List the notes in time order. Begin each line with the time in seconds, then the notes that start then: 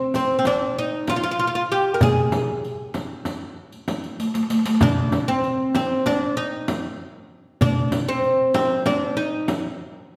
Already playing: C4
0.14 C4, riq, frame drum
0.39 C4
0.45 D4, riq, darbuka tek, frame drum
0.79 D#4
1.07 F4, riq, darbuka tek, frame drum
1.16 F4
1.24 F4
1.31 F4
1.39 F4
1.47 F4
1.55 F4
1.72 G4
1.94 A#4
2.01 G#4, riq, frame drum, darbuka dum
2.32 riq, darbuka tek, frame drum
2.63 riq, darbuka ka
2.94 riq, darbuka tek, frame drum
3.25 riq, darbuka tek, frame drum
3.72 riq, darbuka ka
3.88 riq, darbuka tek, frame drum
4.04 riq, darbuka ka
4.20 riq, darbuka tek
4.27 darbuka ka
4.34 riq, darbuka tek
4.43 darbuka ka
4.50 riq, darbuka tek
4.59 darbuka ka
4.65 riq, darbuka tek
4.75 darbuka ka
4.81 D4, riq, frame drum, darbuka dum
5.12 riq, darbuka tek, frame drum
5.28 C4
5.44 riq
5.75 C4, riq, darbuka tek, frame drum
6.06 D4, riq, darbuka tek, frame drum
6.37 D#4
6.68 riq, darbuka tek, frame drum
6.99 darbuka ka
7.61 D4, riq, frame drum, darbuka dum
7.92 riq, darbuka tek, frame drum
8.09 C4
8.24 riq
8.54 C4, riq, darbuka tek, frame drum
8.86 D4, riq, darbuka tek, frame drum
9.17 D#4
9.48 riq, darbuka tek, frame drum
9.79 darbuka ka